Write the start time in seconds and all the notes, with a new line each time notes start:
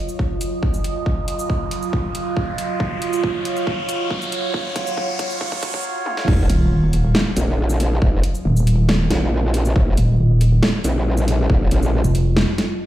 Already playing: F#3 F4 D#5, riser
0.09 shaker
0.19 kick
0.41 closed hi-hat, shaker
0.63 kick
0.74 shaker
0.84 closed hi-hat
1.06 kick
1.28 closed hi-hat
1.39 shaker
1.50 kick
1.71 closed hi-hat
1.82 shaker
1.93 kick
2.15 closed hi-hat
2.37 kick
2.58 closed hi-hat
2.80 C#5, kick
3.02 closed hi-hat
3.13 shaker
3.24 kick
3.45 closed hi-hat
3.56 shaker
3.67 kick
3.89 closed hi-hat, shaker
4.10 kick
4.22 shaker
4.32 closed hi-hat
4.54 kick
4.76 kick, closed hi-hat
4.87 shaker
4.97 kick
5.19 kick, closed hi-hat
5.30 shaker
5.41 kick
5.52 kick
5.63 kick, closed hi-hat
5.74 kick
6.06 high tom
6.17 snare
6.28 D#1 F#3 F4 D#5, kick, crash, sub drop
6.50 D#1, closed hi-hat
6.71 D#1
6.93 closed hi-hat
7.15 snare
7.37 A#1, closed hi-hat, shaker
7.69 shaker
7.80 closed hi-hat
8.02 D#1, kick
8.23 closed hi-hat
8.35 shaker
8.45 D#1
8.56 shaker
8.67 closed hi-hat
8.89 snare
9.10 A#1, snare, closed hi-hat
9.54 closed hi-hat
9.65 shaker
9.76 D#1, kick
9.97 D#1, closed hi-hat
10.19 D#1
10.41 closed hi-hat
10.63 snare
10.84 A#1, closed hi-hat, shaker
11.17 shaker
11.28 closed hi-hat
11.50 D#1, kick
11.71 A#1, closed hi-hat
11.83 shaker
12.04 F1, shaker
12.15 closed hi-hat
12.37 snare
12.58 snare, closed hi-hat